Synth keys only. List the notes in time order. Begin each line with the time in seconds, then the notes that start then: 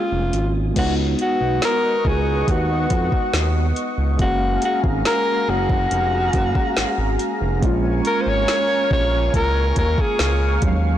Already playing: G#3 A#3 C#4 F4
0.74 G#3 B3
0.78 D#4 F#4
4.17 G#3 A#3
4.21 C#4 F5
6.33 G#3 A#3 C#4 F5
7.60 G#3 A#3
7.64 C#4 F4
10.60 F3 G#3
10.64 F#3 C#4 F5